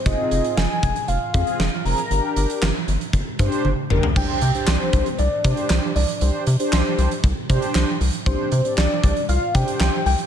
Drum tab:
CC |----------------|----------------|x---------------|----------------|
HH |x-xx--xxx-xx--ox|x-xx--xxx-xx----|--xxx-xxx-xxx-ox|x-xxx-xxx-xxx-ox|
CP |----------------|----x-----------|----x-------x---|----x-------x---|
SD |----o-------o---|----o-----------|----o-------o---|----o-------o---|
T1 |----------------|------------o---|----------------|----------------|
T2 |----------------|--------------o-|----------------|----------------|
FT |----------------|---------------o|----------------|----------------|
BD |o-----o---o-----|--------o-o-----|o-----o---o-----|--------o-o-----|

CC |----------------|
HH |x-xxx-xxx-xxx-ox|
CP |----x-------x---|
SD |----o-------o---|
T1 |----------------|
T2 |----------------|
FT |----------------|
BD |o-----o---o-----|